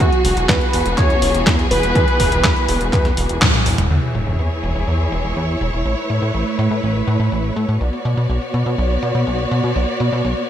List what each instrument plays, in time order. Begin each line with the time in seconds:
Already playing: string section F#4
0.00 analog synth bass E2, string section E3 B3 G#4, analog synth lead F#4, kick, closed hi-hat
0.12 closed hi-hat
0.25 analog synth bass E1, open hi-hat
0.37 analog synth bass E1, closed hi-hat
0.49 analog synth bass E2, analog synth lead B4, kick, snare, clap, closed hi-hat
0.61 closed hi-hat
0.73 analog synth bass E1, open hi-hat
0.86 analog synth bass E1, closed hi-hat
0.98 analog synth bass E2, analog synth lead C#5, kick, clap, closed hi-hat
1.10 closed hi-hat
1.22 analog synth bass E1, open hi-hat
1.34 analog synth bass E1, closed hi-hat
1.47 analog synth bass E2, kick, snare, clap, closed hi-hat
1.59 closed hi-hat
1.71 analog synth bass E1, analog synth lead B4, open hi-hat
1.83 analog synth bass E1, closed hi-hat
1.95 analog synth bass E2, kick, closed hi-hat
2.08 closed hi-hat
2.20 analog synth bass E1, kick, open hi-hat
2.32 analog synth bass E1, closed hi-hat
2.44 analog synth bass E2, kick, snare, clap, closed hi-hat
2.56 closed hi-hat
2.69 analog synth bass E1, open hi-hat
2.81 analog synth bass E1, closed hi-hat
2.93 analog synth bass E2, kick, clap, closed hi-hat
3.05 snare, closed hi-hat
3.17 analog synth bass E1, open hi-hat
3.29 analog synth bass E1, closed hi-hat
3.42 analog synth bass E2, kick, snare, clap, closed hi-hat, high tom
3.54 closed hi-hat, high tom
3.66 analog synth bass E1, open hi-hat
3.78 analog synth bass E1, closed hi-hat, mid tom
3.90 analog synth bass E2, string section E3 E4 G#4 C#5, closed hi-hat, crash, sub drop
4.03 closed hi-hat
4.15 analog synth bass E1, closed hi-hat
4.27 analog synth bass E1, closed hi-hat
4.39 analog synth bass E2, closed hi-hat
4.51 closed hi-hat
4.63 analog synth bass E1, closed hi-hat
4.76 analog synth bass E1, closed hi-hat
4.88 analog synth bass E2, closed hi-hat
5.00 closed hi-hat
5.12 analog synth bass E1, closed hi-hat
5.24 analog synth bass E1, closed hi-hat
5.37 analog synth bass E2, closed hi-hat
5.49 closed hi-hat
5.61 analog synth bass E1, closed hi-hat
5.73 analog synth bass E1, closed hi-hat
5.86 analog synth bass A1, string section A3 B4, closed hi-hat
5.98 closed hi-hat
6.10 analog synth bass A2, closed hi-hat
6.22 analog synth bass A2, closed hi-hat
6.34 analog synth bass A1, closed hi-hat
6.47 closed hi-hat
6.59 analog synth bass A2, closed hi-hat
6.71 analog synth bass A2, closed hi-hat
6.83 analog synth bass A1, closed hi-hat
6.95 closed hi-hat
7.08 analog synth bass A2, closed hi-hat
7.20 analog synth bass A2, closed hi-hat
7.32 analog synth bass A1, closed hi-hat
7.44 closed hi-hat
7.56 analog synth bass A2, closed hi-hat
7.68 analog synth bass A2, closed hi-hat
7.81 analog synth bass B1, string section B3 F#4 C#5 D5, closed hi-hat
7.93 closed hi-hat
8.05 analog synth bass B2, closed hi-hat
8.17 analog synth bass B2, closed hi-hat
8.29 analog synth bass B1, closed hi-hat
8.42 closed hi-hat
8.54 analog synth bass B2, closed hi-hat
8.66 analog synth bass B2, closed hi-hat
8.78 analog synth bass B1, closed hi-hat
8.90 closed hi-hat
9.03 analog synth bass B2, closed hi-hat
9.15 analog synth bass B2, closed hi-hat
9.27 analog synth bass B1, closed hi-hat
9.39 closed hi-hat
9.51 analog synth bass B2, closed hi-hat
9.64 analog synth bass B2, closed hi-hat
9.76 analog synth bass B1, closed hi-hat
9.88 closed hi-hat
10.00 analog synth bass B2, closed hi-hat
10.12 analog synth bass B2, closed hi-hat
10.25 analog synth bass B1, closed hi-hat
10.37 closed hi-hat